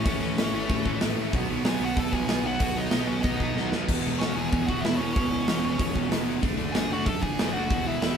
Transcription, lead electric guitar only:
0.05 0.98 C#4 medium
0.05 0.97 C#5 medium
1.65 1.80 G#4 medium
1.65 1.82 G#5 loud
1.82 1.97 F#4 medium
1.82 2.00 F#5 loud
1.98 2.13 A4 medium
1.98 2.14 A5 loud
2.13 2.43 G#4 loud
2.13 2.46 G#5 loud
2.46 2.76 F#4 medium
2.46 2.79 F#5 loud
2.77 2.91 D#4 medium
2.77 2.90 D#5 medium
2.91 3.08 D#4 medium
2.91 3.08 D#5 medium
3.07 3.23 C#4 medium
3.07 3.22 C#5 medium
3.22 3.69 D#4 medium
3.22 3.68 D#5 medium
4.19 4.35 C#4 medium
4.19 4.36 C#5 medium
4.36 4.50 G#4 medium
4.36 4.48 G#5 loud
4.49 4.67 G#4 medium
4.49 4.66 G#5 loud
4.66 4.84 F#4 medium
4.66 4.84 F#5 loud
4.80 4.96 E5 loud
4.85 5.00 E4 medium
4.97 5.16 C#4 medium
4.97 5.11 C#5 medium
5.13 6.06 C#5 medium
5.18 6.09 C#4 medium
6.72 6.90 G#4 medium
6.72 6.92 G#5 loud
6.92 7.07 F#4 medium
6.92 7.06 F#5 loud
7.05 7.21 A4 medium
7.05 7.22 A5 loud
7.22 7.53 G#4 medium
7.22 7.53 G#5 loud
7.53 7.84 F#4 medium
7.53 7.87 F#5 loud
7.88 8.02 E4 medium
7.88 8.01 E5 medium
8.03 8.17 E4 medium
8.03 8.17 E5 medium

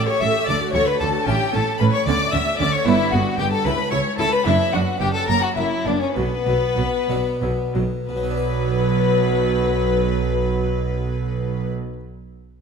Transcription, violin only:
0.07 0.22 C#5 medium
0.21 0.46 E5 medium
0.47 0.72 D5 medium
0.73 0.89 C#5 medium
0.87 1.00 B4 medium
1.00 1.08 A4 medium
1.27 1.53 G4 medium
1.54 1.79 A4 medium
1.80 1.85 B4 medium
1.92 2.05 C#5 medium
2.06 2.34 D5 medium
2.32 2.57 E5 medium
2.58 2.74 D5 loud
2.73 2.87 C#5 medium
2.85 3.14 E4 medium
3.12 3.38 F#4 medium
3.39 3.44 G4 medium
3.52 3.66 A4 medium
3.65 3.91 B4 medium
3.91 3.99 C#5 loud
4.19 4.34 A4 loud
4.33 4.47 B4 medium
4.45 4.74 E4 medium
4.73 5.00 F#4 medium
5.00 5.13 G4 medium
5.14 5.28 A4 medium
5.28 5.42 A#4 medium
5.43 5.49 F#4 medium
5.58 5.88 E4 medium
5.87 6.01 D4 medium
6.02 6.08 C#4 medium
6.16 7.72 B3 medium
8.09 11.72 B4 medium

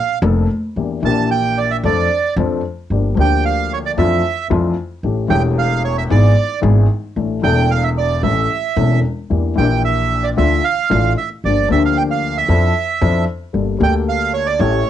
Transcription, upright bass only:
0.22 0.45 F1 medium
0.76 0.99 E2 soft
1.03 1.80 A#1 medium
1.83 2.06 F2 medium
2.36 2.60 F2 medium
2.90 3.13 G1 medium
3.17 3.94 D2 medium
3.98 4.20 F2 medium
4.51 4.73 F2 medium
5.03 5.26 A1 medium
5.30 6.06 E1 medium
6.10 6.33 G#1 medium
6.63 6.85 G#1 medium
7.16 7.39 A1 medium
7.44 8.19 E1 medium
8.23 8.46 A1 medium
8.77 8.99 E1 medium
9.30 9.53 E2 soft
9.58 10.33 A#1 medium
10.38 10.60 D2 medium
10.91 11.13 A1 medium
11.44 11.66 G1 soft
11.70 12.45 D2 medium
12.49 12.71 F2 medium
13.01 13.23 F2 medium
13.54 13.76 G1 medium
13.80 14.56 D2 medium
14.59 14.82 A1 medium

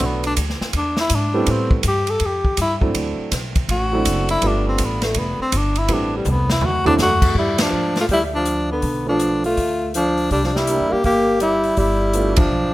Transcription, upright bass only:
0.01 0.36 B1 medium
0.37 0.60 D2 medium
0.61 muted upright bass stroke soft
0.73 1.10 E2 medium
1.10 1.47 G#2 medium
1.47 1.83 A2 medium
1.84 2.20 G2 medium
2.21 2.57 F2 medium
2.58 2.94 G2 medium
2.95 3.17 D2 medium
3.19 muted upright bass stroke soft
3.32 3.68 B1 medium
3.68 4.04 A1 medium
4.06 4.41 F#1 medium
4.42 4.78 G1 medium
4.79 5.15 A1 medium
5.15 5.38 F1 medium
5.39 muted upright bass stroke soft
5.52 5.88 G1 medium
5.89 6.25 A1 medium
6.25 6.61 C2 medium
6.61 6.98 D2 medium
6.99 7.34 F#2 medium
7.35 7.70 G2 medium
7.72 8.07 G#2 medium
8.09 8.79 D2 medium
8.83 9.53 B1 medium
9.57 10.27 D2 medium
10.31 10.76 C2 medium
10.80 10.91 E2 medium
10.92 11.03 G2 medium
11.04 11.74 G1 medium
11.77 12.47 G1 medium
12.50 12.74 B1 medium

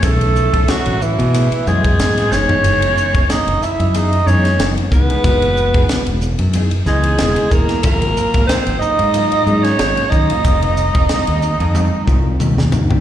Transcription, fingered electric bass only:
0.03 0.48 B1 loud
0.54 0.67 B1 medium
0.87 1.15 A1 medium
1.19 1.47 B2 medium
1.52 muted fingered electric bass stroke soft
1.67 1.95 F#2 medium
1.99 2.32 A1 medium
2.32 2.47 F#1 medium
2.64 2.93 F#1 loud
3.14 3.27 F#1 medium
3.47 3.60 F#1 medium
3.62 muted fingered electric bass stroke soft
3.79 4.21 F#2 medium
4.27 4.55 F#2 medium
4.59 4.75 F#1 medium
4.92 5.07 C#2 medium
5.09 muted fingered electric bass stroke soft
5.24 5.68 F#1 loud
5.75 5.88 F#1 medium
5.90 muted fingered electric bass stroke soft
6.07 6.36 E1 medium
6.39 6.68 F#2 medium
6.72 muted fingered electric bass stroke soft
6.86 7.15 C#2 medium
7.19 7.35 E1 medium
7.52 7.67 E1 medium
7.68 muted fingered electric bass stroke soft
7.84 8.13 G#1 loud
8.35 8.48 G#1 medium
8.49 muted fingered electric bass stroke soft
8.67 8.80 G#1 medium
8.82 muted fingered electric bass stroke soft
8.99 9.41 G#2 medium
9.47 9.75 G#2 medium
9.80 9.95 G#1 medium
10.12 10.28 D#2 medium
10.31 muted fingered electric bass stroke soft
10.45 10.89 F1 loud
10.95 11.08 F1 medium
11.10 muted fingered electric bass stroke soft
11.28 11.56 D#2 medium
11.60 11.89 F2 medium
11.93 muted fingered electric bass stroke soft
12.07 12.36 C2 medium
12.39 12.55 D#2 medium
12.57 12.70 D#2 medium
12.72 12.88 D2 medium
12.90 13.00 C2 medium

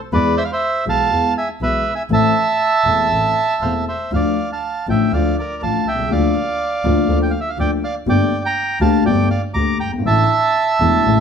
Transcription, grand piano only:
0.12 0.33 E2 medium
0.12 0.33 E3 medium
0.12 0.33 G#3 medium
0.12 0.33 B3 medium
0.12 0.33 G#4 medium
0.85 1.06 B1 soft
0.85 1.07 B2 medium
0.85 1.06 E3 soft
0.85 1.06 G#3 soft
0.85 1.06 B3 soft
0.85 1.07 G#4 soft
1.11 1.32 E2 medium
1.11 1.32 E3 medium
1.11 1.32 G#3 soft
1.11 1.32 B3 soft
1.11 1.32 G#4 soft
1.61 1.82 B1 soft
1.61 1.82 B2 soft
1.61 1.81 E3 soft
1.61 1.81 G#3 soft
1.61 1.82 B3 soft
1.61 1.82 G#4 soft
2.10 2.31 A1 medium
2.10 2.31 A2 medium
2.10 2.31 E3 medium
2.10 2.31 A3 medium
2.10 2.31 C4 medium
2.10 2.32 A4 medium
2.85 3.06 E1 soft
2.85 3.07 E2 soft
2.85 3.06 E3 soft
2.85 3.06 A3 soft
2.85 3.06 C4 soft
2.85 3.06 A4 soft
3.10 3.32 A1 soft
3.10 3.32 A2 soft
3.10 3.31 E3 soft
3.10 3.31 A3 soft
3.10 3.32 C4 soft
3.10 3.32 A4 soft
3.62 3.83 E1 soft
3.62 3.84 E2 soft
3.62 3.83 E3 soft
3.62 3.84 A3 soft
3.62 3.84 C4 soft
3.62 3.84 A4 soft
4.12 4.34 D2 medium
4.12 4.33 D3 medium
4.12 4.33 F3 soft
4.12 4.33 A3 soft
4.12 4.34 F4 medium
4.88 5.09 A1 medium
4.88 5.09 A2 medium
4.88 5.09 D3 medium
4.88 5.09 F3 medium
4.88 5.09 A3 medium
4.88 5.09 F4 medium
5.12 5.33 D2 medium
5.12 5.33 D3 medium
5.12 5.33 F3 soft
5.12 5.33 A3 medium
5.12 5.33 F4 medium
5.62 5.83 A1 soft
5.62 5.83 A2 soft
5.62 5.83 D3 soft
5.62 5.83 F3 soft
5.62 5.83 A3 soft
5.62 5.83 F4 soft
5.94 6.00 B1 soft
5.99 6.05 C2 medium
6.05 6.11 C#2 medium
6.11 6.32 D2 medium
6.11 6.32 D3 medium
6.11 6.32 F3 soft
6.11 6.32 A#3 medium
6.11 6.32 F4 medium
6.84 7.05 D2 medium
6.84 7.05 D3 medium
6.84 7.05 F3 medium
6.84 7.05 A#3 medium
6.84 7.05 F4 medium
7.08 7.29 D2 medium
7.08 7.30 D3 medium
7.08 7.30 F3 medium
7.08 7.30 A#3 medium
7.08 7.30 F4 medium
7.57 7.79 D2 soft
7.57 7.79 D3 soft
7.57 7.78 F3 soft
7.57 7.78 A#3 soft
7.57 7.79 F4 soft
8.06 8.28 G1 medium
8.06 8.28 G2 medium
8.06 8.27 D3 medium
8.06 8.28 A3 medium
8.06 8.28 A#3 medium
8.06 8.28 G4 medium
8.81 9.02 D2 medium
8.81 9.02 D3 medium
8.81 9.02 A3 medium
8.81 9.02 A#3 medium
8.81 9.02 G4 medium
9.05 9.26 G1 medium
9.05 9.27 G2 medium
9.05 9.26 D3 medium
9.05 9.26 A3 medium
9.05 9.27 A#3 medium
9.05 9.27 G4 medium
9.55 9.76 D2 soft
9.55 9.76 D3 soft
9.55 9.76 A3 soft
9.55 9.76 A#3 soft
9.55 9.77 G4 soft
9.87 9.93 F#1 soft
9.93 9.99 G1 medium
9.99 10.05 G#1 medium
10.05 10.26 A1 medium
10.05 10.26 A2 medium
10.05 10.26 D3 medium
10.05 10.26 E3 medium
10.05 10.26 A3 medium
10.05 10.27 E4 medium
10.81 11.02 E1 medium
10.81 11.01 E2 medium
10.81 11.01 D3 medium
10.81 11.01 E3 medium
10.81 11.02 A3 medium
10.81 11.01 E4 medium
11.06 11.20 A1 medium
11.06 11.20 A2 medium
11.06 11.20 C#3 medium
11.06 11.20 E3 medium
11.06 11.20 A3 medium
11.06 11.20 E4 medium

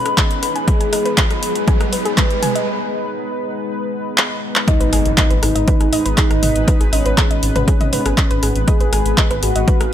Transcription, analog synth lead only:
0.00 0.58 C#4 loud
0.68 1.33 G#4 loud
1.43 2.08 G#4 loud
2.18 2.68 B4 medium
4.68 5.33 D#4 loud
5.43 6.08 D#4 loud
6.18 6.83 D#4 loud
6.93 8.58 C#4 loud
8.68 9.33 G#4 loud
9.43 9.94 F#4 loud

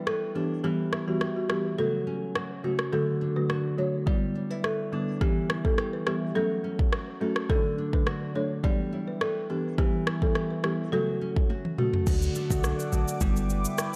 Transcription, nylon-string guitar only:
0.00 0.64 G3 medium
0.00 0.70 E4 medium
0.07 0.70 B4 medium
0.35 0.70 D4 medium
0.64 1.78 E3 medium
0.93 1.49 E4 medium
1.21 1.84 G4 medium
1.50 1.84 E4 medium
1.78 2.99 F#3 medium
2.07 2.99 C#4 medium
2.35 2.99 F#4 medium
2.64 2.99 A3 medium
2.93 4.13 D3 medium
3.21 3.77 D4 medium
3.50 4.13 F#4 medium
3.78 4.13 D4 medium
4.07 5.21 G3 medium
4.35 4.51 D4 medium
4.51 5.27 E4 medium
4.64 5.27 B4 medium
4.93 5.27 D4 medium
5.21 6.35 E3 medium
5.50 6.06 E4 medium
5.78 6.42 G4 medium
6.07 6.42 E4 medium
6.35 7.56 F#3 medium
6.64 7.56 C#4 medium
6.93 7.56 F#4 medium
7.21 7.56 A3 medium
7.50 8.70 D3 medium
7.78 8.34 D4 medium
8.07 8.70 F#4 medium
8.35 8.70 D4 medium
8.64 9.78 G3 medium
8.93 9.84 E4 medium
9.21 9.84 B4 medium
9.50 9.84 D4 medium
9.78 10.92 E3 medium
10.07 10.63 E4 medium
10.36 10.99 G4 medium
10.64 10.99 E4 medium
10.93 12.13 F#3 medium
11.21 12.13 C#4 medium
11.50 12.13 F#4 medium
11.78 12.13 A3 medium
12.07 13.27 D3 medium
12.36 13.27 A3 medium
12.64 13.27 D4 medium
12.93 13.27 F#4 medium
13.21 13.96 G3 medium
13.50 13.96 B4 medium
13.78 13.96 E4 medium

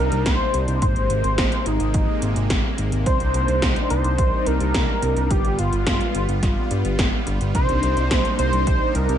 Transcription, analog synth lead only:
0.00 0.25 A#4 loud
0.26 0.78 C5 loud
0.82 1.68 C5 loud
1.66 2.50 D#4 medium
3.06 3.86 C5 loud
3.90 4.48 C5 loud
4.47 5.32 A#4 loud
5.31 5.60 G4 loud
5.59 6.71 F4 medium
7.55 8.35 C5 loud
8.39 8.96 C5 loud
8.95 9.18 A#4 loud

